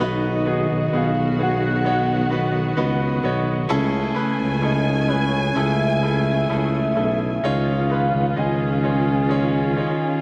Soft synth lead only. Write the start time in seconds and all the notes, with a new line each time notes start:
0.03 D#5
0.97 F5
1.43 F#5
4.65 D#5
5.09 C#5
5.56 E5
6.03 E5
7.45 F5
8.39 G#5
9.34 G#5